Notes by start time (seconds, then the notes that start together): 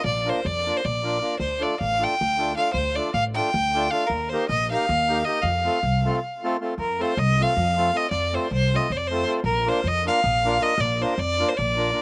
0.04 A#1 D5
0.25 A#3 D4 F4 A#4
0.30 C5
0.45 F2 D5
0.65 A#3 D4 F4 A#4
0.77 C5
0.85 A#1 D5
1.02 A#3 D4 F4 A#4
1.21 A#3 D4 F4 A#4
1.39 D2 C5
1.59 A3 D4 F4 A4 D5
1.80 A1 F5
1.99 A3 D4 F4 A4
2.04 G5
2.21 D2
2.37 A3 D4 F4 A4
2.56 A3 D4 F4 A4 F5
2.73 D2 C5
2.95 A3 D4 F4 A4 D5
3.14 A1 F5
3.35 A3 D4 F4 A4 G5
3.54 D2
3.74 A3 D4 F4 A4
3.90 A3 D4 F4 A4 F5
4.07 D#2 A#4
4.30 A#3 D#4 G4 A#4 C5
4.49 A#1 D#5
4.71 A#3 D#4 G4 A#4 F5
4.89 D#2
5.08 A#3 D#4 G4 A#4
5.25 A#3 D#4 G4 A#4 D#5
5.42 F2 F5
5.64 A3 C4 F4 A4
5.83 C2
6.04 A3 C4 F4 A4
6.44 A3 C4 F4 A4
6.61 A3 C4 F4 A4
6.78 F2 A#4
6.99 A3 C4 F4 A4 C5
7.17 C2 D#5
7.39 A3 C4 F4 A4 F5
7.57 F2
7.76 A3 C4 F4 A4
7.93 A3 C4 F4 A4
7.97 D#5
8.11 F2 D5
8.32 A3 C4 F4 A4 C5
8.51 C2 C5
8.73 A3 C4 F4 A4 D#5
8.90 F2 C5
8.97 D5
9.07 A3 C5
9.11 C4 F4 A4
9.26 A3 C4 F4 A4
9.44 A#1 A#4
9.65 A#3 D4 F4 A#4 C5
9.84 F2 D#5
10.05 A#3 D4 F4 A#4 F5
10.24 A#1
10.45 A#3 D4 F4 A#4
10.59 A#3 D4 F4 A#4 D#5
10.78 A#1 D5
11.00 A#3 D4 F4 A#4 C5
11.18 F2 D5
11.39 A#3 D4 F4 A#4
11.49 C5
11.57 A#1 D5
11.76 A#3 D4 F4 A#4
11.93 A#3 D4 F4 A#4